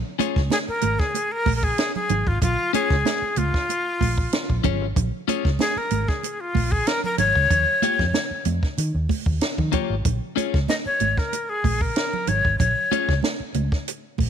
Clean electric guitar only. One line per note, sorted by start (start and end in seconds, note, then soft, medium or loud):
0.19 0.40 C#4 medium
0.19 0.41 F4 medium
0.19 0.41 G#4 medium
0.19 0.41 C#5 medium
2.73 2.95 C#4 medium
2.73 2.95 F4 medium
2.73 2.95 G#4 medium
2.73 2.96 C#5 medium
4.64 4.85 C#4 medium
4.64 4.86 F4 medium
4.64 4.86 G#4 medium
4.64 4.86 C#5 medium
5.28 5.49 C#4 medium
5.28 5.49 F4 medium
5.28 5.50 G#4 medium
5.28 5.50 C#5 medium
7.82 8.04 A#3 medium
7.82 8.04 F4 medium
7.82 8.04 G4 medium
7.82 8.04 C#5 medium
9.72 9.94 A#3 medium
9.72 9.94 F4 medium
9.72 9.95 G4 medium
9.72 9.95 C#5 medium
10.36 10.58 C#4 medium
10.36 10.58 F4 medium
10.36 10.58 G#4 medium
10.36 10.58 C#5 medium
12.91 13.13 C#4 medium
12.91 13.13 F4 medium
12.91 13.13 G#4 medium
12.91 13.13 C#5 medium